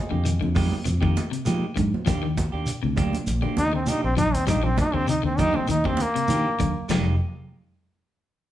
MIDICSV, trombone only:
0, 0, Header, 1, 2, 480
1, 0, Start_track
1, 0, Tempo, 603622
1, 1644, Time_signature, 4, 2, 24, 8
1, 6770, End_track
2, 0, Start_track
2, 0, Title_t, "Trombone"
2, 0, Program_c, 0, 57
2, 0, Note_on_c, 0, 56, 100
2, 418, Note_off_c, 0, 56, 0
2, 2853, Note_on_c, 0, 63, 102
2, 2967, Note_off_c, 0, 63, 0
2, 2983, Note_on_c, 0, 60, 81
2, 3093, Note_on_c, 0, 63, 84
2, 3105, Note_off_c, 0, 60, 0
2, 3207, Note_off_c, 0, 63, 0
2, 3218, Note_on_c, 0, 60, 90
2, 3319, Note_off_c, 0, 60, 0
2, 3324, Note_on_c, 0, 63, 109
2, 3455, Note_on_c, 0, 60, 96
2, 3467, Note_off_c, 0, 63, 0
2, 3557, Note_off_c, 0, 60, 0
2, 3564, Note_on_c, 0, 63, 83
2, 3695, Note_on_c, 0, 60, 92
2, 3707, Note_off_c, 0, 63, 0
2, 3797, Note_off_c, 0, 60, 0
2, 3814, Note_on_c, 0, 63, 91
2, 3932, Note_on_c, 0, 60, 99
2, 3943, Note_off_c, 0, 63, 0
2, 4035, Note_off_c, 0, 60, 0
2, 4053, Note_on_c, 0, 63, 80
2, 4167, Note_off_c, 0, 63, 0
2, 4179, Note_on_c, 0, 60, 90
2, 4287, Note_on_c, 0, 63, 101
2, 4299, Note_off_c, 0, 60, 0
2, 4422, Note_on_c, 0, 60, 88
2, 4434, Note_off_c, 0, 63, 0
2, 4521, Note_off_c, 0, 60, 0
2, 4540, Note_on_c, 0, 63, 83
2, 4666, Note_on_c, 0, 60, 88
2, 4678, Note_off_c, 0, 63, 0
2, 4786, Note_on_c, 0, 58, 107
2, 4798, Note_off_c, 0, 60, 0
2, 5473, Note_off_c, 0, 58, 0
2, 6770, End_track
0, 0, End_of_file